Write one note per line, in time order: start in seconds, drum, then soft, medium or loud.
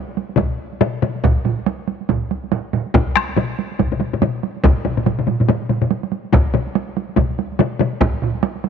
0.08 taiko high soft
0.17 taiko high medium
0.29 taiko high soft
0.37 taiko medium
0.37 taiko low-mid loud
0.37 taiko high medium
0.51 taiko high soft
0.73 taiko high soft
0.81 taiko low-mid loud
0.81 taiko high medium
1.02 taiko low-mid loud
1.02 taiko high soft
1.15 taiko high soft
1.24 taiko medium
1.24 taiko mid loud
1.24 taiko high medium
1.37 taiko high soft
1.45 taiko mid loud
1.45 taiko high soft
1.58 taiko high soft
1.66 taiko high medium
1.79 taiko high soft
1.88 taiko high medium
2.01 taiko high soft
2.09 taiko medium
2.09 taiko mid medium
2.09 taiko high medium
2.22 taiko high soft
2.31 taiko high medium
2.44 taiko high soft
2.52 taiko mid loud
2.52 taiko high medium
2.73 taiko mid loud
2.73 taiko high medium
2.86 taiko high soft
2.94 taiko loud
2.94 taiko low-mid loud
2.94 taiko high medium
3.08 taiko high soft
3.16 taiko rim medium
3.16 taiko high medium
3.29 taiko high soft
3.37 taiko low-mid medium
3.37 taiko high medium
3.50 taiko high soft
3.59 taiko high medium
3.71 taiko high soft
3.79 taiko medium
3.79 taiko low-mid medium
3.79 taiko high medium
3.92 taiko low-mid medium
3.92 taiko high soft
4.00 taiko low-mid medium
4.00 taiko high medium
4.13 taiko low-mid medium
4.13 taiko high soft
4.22 taiko low-mid loud
4.22 taiko high medium
4.43 taiko high medium
4.57 taiko high soft
4.64 taiko loud
4.64 taiko low-mid loud
4.64 taiko mid loud
4.64 taiko high medium
4.77 taiko high soft
4.85 taiko low-mid medium
4.85 taiko mid medium
4.85 taiko high soft
4.97 taiko low-mid medium
4.97 taiko mid medium
4.97 taiko high soft
5.06 taiko low-mid medium
5.06 taiko mid medium
5.06 taiko high medium
5.19 taiko low-mid medium
5.19 taiko mid medium
5.19 taiko high soft
5.27 taiko low-mid medium
5.27 taiko mid medium
5.27 taiko high medium
5.40 taiko low-mid medium
5.40 taiko mid medium
5.40 taiko high soft
5.48 taiko low-mid loud
5.48 taiko mid medium
5.48 taiko high medium
5.62 taiko high soft
5.69 taiko low-mid medium
5.69 taiko mid medium
5.69 taiko high medium
5.82 taiko low-mid medium
5.82 taiko mid medium
5.82 taiko high soft
5.91 taiko high medium
6.03 taiko high soft
6.12 taiko high medium
6.25 taiko high soft
6.33 taiko loud
6.33 taiko low-mid medium
6.33 taiko high medium
6.46 taiko high soft
6.54 taiko low-mid medium
6.54 taiko high medium
6.67 taiko high soft
6.75 taiko high medium
6.88 taiko high soft
6.97 taiko high medium
7.09 taiko high soft
7.17 taiko medium
7.17 taiko low-mid loud
7.17 taiko high medium
7.30 taiko high soft
7.39 taiko high medium
7.52 taiko high soft
7.59 taiko low-mid loud
7.59 taiko high medium
7.79 taiko low-mid loud
7.79 taiko high medium
7.93 taiko high soft
8.01 taiko loud
8.01 taiko mid loud
8.01 taiko high medium
8.14 taiko high soft
8.22 taiko mid medium
8.34 taiko high soft
8.43 taiko high medium
8.56 taiko high soft
8.64 taiko high medium